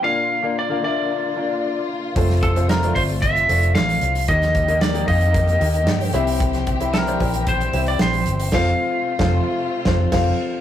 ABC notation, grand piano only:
X:1
M:4/4
L:1/16
Q:1/4=113
K:F
V:1 name="Grand piano"
[B,DFBd]2 z [B,DFBd] z [B,DFBf] [B,DFBe]3 z [B,DFBd]4 z2 | [A,CFAc]2 z [A,CFAc] z [A,CFAd] [A,CFd]3 z [A,CFAd]4 z2 | [B,_EGB_e]2 z [B,EGBe] z [B,EGBe] [B,EGBf]3 z [B,EGBe]4 [C=EGc=e]2- | [CEGce]2 z [CEGce] z [CEGcd] [CEGcg]3 z [CEGce]4 z2 |
[CFAcf]2 z3 [CFAc]2 z3 [CFAcf]2 [CFAcf]2 z2 |]
V:2 name="Grand piano" clef=bass
B,,6 z8 z2 | z16 | _E,6 z8 C,2- | C,4 z12 |
z16 |]